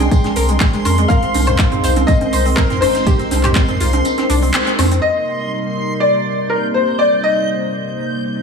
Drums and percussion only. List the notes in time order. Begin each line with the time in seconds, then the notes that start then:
0.00 shaker
0.11 kick, closed hi-hat, tambourine, shaker
0.24 snare, closed hi-hat, high conga, shaker
0.36 open hi-hat, tambourine, shaker
0.49 closed hi-hat, shaker
0.60 kick, snare, clap, closed hi-hat, tambourine, shaker
0.73 snare, closed hi-hat, shaker
0.85 open hi-hat, tambourine, high conga, high woodblock, shaker
0.98 closed hi-hat, shaker
1.10 kick, closed hi-hat, tambourine, shaker
1.23 closed hi-hat, shaker
1.34 open hi-hat, tambourine, high conga, shaker
1.47 closed hi-hat, mid tom, high woodblock, shaker
1.59 kick, snare, clap, closed hi-hat, tambourine, shaker
1.72 closed hi-hat, mid tom, shaker
1.83 snare, open hi-hat, tambourine, shaker
1.96 closed hi-hat, high conga, shaker
2.08 kick, closed hi-hat, tambourine, shaker
2.21 closed hi-hat, high conga, shaker
2.33 open hi-hat, tambourine, shaker
2.46 open hi-hat, shaker
2.57 kick, snare, clap, tambourine, shaker
2.70 snare, closed hi-hat, mid tom, shaker
2.82 open hi-hat, high conga, high woodblock, shaker
2.95 snare, closed hi-hat, shaker
3.07 kick, closed hi-hat, tambourine, shaker
3.19 closed hi-hat, shaker
3.31 snare, open hi-hat, tambourine, high conga, shaker
3.44 clap, closed hi-hat, mid tom, high woodblock, shaker
3.55 kick, snare, clap, closed hi-hat, tambourine, shaker
3.68 closed hi-hat, mid tom, shaker
3.80 open hi-hat, tambourine, shaker
3.93 closed hi-hat, high conga, shaker
4.05 closed hi-hat, tambourine, shaker
4.18 snare, closed hi-hat, high conga, shaker
4.30 open hi-hat, tambourine, shaker
4.42 open hi-hat, shaker
4.53 snare, clap, closed hi-hat, tambourine, shaker
4.67 snare, closed hi-hat, shaker
4.79 snare, open hi-hat, tambourine, high conga, high woodblock, shaker
4.91 closed hi-hat, shaker
5.04 shaker
5.17 shaker
5.78 shaker
6.27 shaker
7.75 shaker
7.99 shaker
8.24 shaker
8.36 shaker